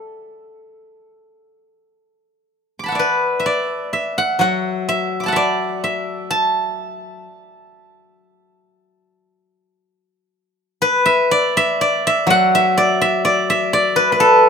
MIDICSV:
0, 0, Header, 1, 2, 480
1, 0, Start_track
1, 0, Tempo, 925926
1, 1302, Time_signature, 4, 2, 24, 8
1, 1788, Tempo, 949367
1, 3708, Tempo, 1013514
1, 5628, Tempo, 955414
1, 7231, End_track
2, 0, Start_track
2, 0, Title_t, "Guzheng"
2, 0, Program_c, 0, 107
2, 0, Note_on_c, 0, 69, 58
2, 0, Note_on_c, 0, 74, 55
2, 89, Note_off_c, 0, 74, 0
2, 517, Note_off_c, 0, 69, 0
2, 1448, Note_on_c, 0, 86, 26
2, 1470, Note_on_c, 0, 83, 29
2, 1482, Note_on_c, 0, 81, 27
2, 1495, Note_on_c, 0, 78, 31
2, 1513, Note_on_c, 0, 76, 29
2, 1530, Note_on_c, 0, 74, 38
2, 1552, Note_on_c, 0, 71, 60
2, 1758, Note_off_c, 0, 76, 0
2, 1760, Note_on_c, 0, 76, 46
2, 1791, Note_off_c, 0, 74, 0
2, 1793, Note_on_c, 0, 74, 61
2, 2029, Note_off_c, 0, 76, 0
2, 2031, Note_on_c, 0, 76, 55
2, 2073, Note_off_c, 0, 86, 0
2, 2155, Note_off_c, 0, 78, 0
2, 2157, Note_on_c, 0, 78, 71
2, 2161, Note_off_c, 0, 83, 0
2, 2222, Note_off_c, 0, 81, 0
2, 2264, Note_on_c, 0, 54, 44
2, 2271, Note_off_c, 0, 78, 0
2, 2273, Note_on_c, 0, 78, 68
2, 2512, Note_off_c, 0, 76, 0
2, 2514, Note_on_c, 0, 76, 70
2, 2592, Note_off_c, 0, 71, 0
2, 2673, Note_on_c, 0, 86, 29
2, 2691, Note_on_c, 0, 83, 34
2, 2704, Note_on_c, 0, 81, 38
2, 2713, Note_off_c, 0, 78, 0
2, 2715, Note_on_c, 0, 78, 43
2, 2727, Note_off_c, 0, 74, 0
2, 2734, Note_off_c, 0, 76, 0
2, 2736, Note_on_c, 0, 76, 49
2, 2755, Note_on_c, 0, 74, 68
2, 2993, Note_off_c, 0, 76, 0
2, 2995, Note_on_c, 0, 76, 59
2, 3230, Note_off_c, 0, 81, 0
2, 3232, Note_on_c, 0, 81, 75
2, 3290, Note_off_c, 0, 86, 0
2, 3373, Note_off_c, 0, 83, 0
2, 3526, Note_off_c, 0, 78, 0
2, 3689, Note_off_c, 0, 74, 0
2, 3707, Note_off_c, 0, 54, 0
2, 3755, Note_off_c, 0, 81, 0
2, 3755, Note_on_c, 0, 82, 75
2, 3856, Note_off_c, 0, 76, 0
2, 3892, Note_off_c, 0, 82, 0
2, 3892, Note_on_c, 0, 81, 75
2, 4034, Note_off_c, 0, 81, 0
2, 4034, Note_on_c, 0, 82, 75
2, 4171, Note_off_c, 0, 82, 0
2, 4171, Note_on_c, 0, 81, 75
2, 4659, Note_off_c, 0, 81, 0
2, 5399, Note_on_c, 0, 71, 77
2, 5512, Note_on_c, 0, 76, 83
2, 5635, Note_on_c, 0, 74, 80
2, 5761, Note_off_c, 0, 76, 0
2, 5763, Note_on_c, 0, 76, 91
2, 5882, Note_off_c, 0, 74, 0
2, 5884, Note_on_c, 0, 74, 77
2, 6012, Note_off_c, 0, 76, 0
2, 6014, Note_on_c, 0, 76, 91
2, 6113, Note_on_c, 0, 54, 61
2, 6132, Note_on_c, 0, 78, 92
2, 6253, Note_off_c, 0, 76, 0
2, 6255, Note_on_c, 0, 76, 90
2, 6367, Note_off_c, 0, 74, 0
2, 6369, Note_on_c, 0, 74, 77
2, 6413, Note_off_c, 0, 71, 0
2, 6487, Note_off_c, 0, 76, 0
2, 6489, Note_on_c, 0, 76, 86
2, 6604, Note_off_c, 0, 74, 0
2, 6606, Note_on_c, 0, 74, 80
2, 6730, Note_off_c, 0, 76, 0
2, 6732, Note_on_c, 0, 76, 77
2, 6848, Note_off_c, 0, 74, 0
2, 6850, Note_on_c, 0, 74, 78
2, 6938, Note_off_c, 0, 78, 0
2, 6964, Note_on_c, 0, 71, 78
2, 7043, Note_off_c, 0, 71, 0
2, 7045, Note_on_c, 0, 71, 58
2, 7085, Note_on_c, 0, 69, 80
2, 7231, Note_off_c, 0, 54, 0
2, 7231, Note_off_c, 0, 69, 0
2, 7231, Note_off_c, 0, 71, 0
2, 7231, Note_off_c, 0, 74, 0
2, 7231, Note_off_c, 0, 76, 0
2, 7231, End_track
0, 0, End_of_file